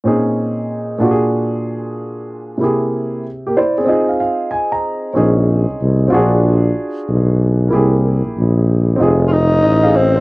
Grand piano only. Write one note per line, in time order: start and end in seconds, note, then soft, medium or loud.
0.04 0.97 A#2 medium
0.04 1.01 C4 medium
0.04 1.01 C#4 medium
0.04 1.02 D#4 medium
0.04 1.02 G#4 medium
0.98 2.56 A#2 medium
0.98 2.57 D4 medium
0.98 2.58 F4 medium
1.03 2.59 F#4 medium
1.03 1.12 G4 medium
1.11 2.62 G#4 medium
2.58 3.84 C3 medium
2.58 3.23 A#3 medium
2.58 3.23 E4 medium
2.62 3.24 G4 medium
2.62 3.25 G#4 medium
3.47 3.57 A#3 soft
3.47 3.57 G4 medium
3.57 3.77 E4 medium
3.57 3.77 C5 medium
3.57 3.86 D5 medium
3.78 3.83 C4 medium
3.78 3.89 G#4 medium
3.85 5.12 C4 medium
3.85 5.13 D#4 medium
3.85 4.08 D#5 medium
3.89 5.14 F4 medium
3.89 5.15 G#4 medium
4.09 4.19 F5 medium
4.20 4.50 F5 medium
4.51 4.71 G#5 medium
4.72 5.13 A#5 medium
5.14 6.06 C4 medium
5.14 6.11 C#4 medium
5.14 6.12 D#4 medium
5.14 6.12 G#4 medium
6.08 6.18 C4 medium
6.08 7.67 F4 medium
6.12 7.70 D4 medium
6.12 7.69 F#4 medium
6.12 7.70 G#4 medium
7.68 8.95 A#3 medium
7.68 8.96 E4 medium
7.73 8.97 G4 medium
7.73 8.98 G#4 medium
8.96 10.20 C4 medium
8.96 9.30 D#4 medium
9.00 9.31 F4 medium
9.00 9.32 G#4 medium
9.63 9.83 D#5 medium
9.83 9.95 G#4 medium
9.83 9.94 F5 medium
9.95 10.15 D#5 medium
10.16 10.20 D#4 medium
10.16 10.20 C5 medium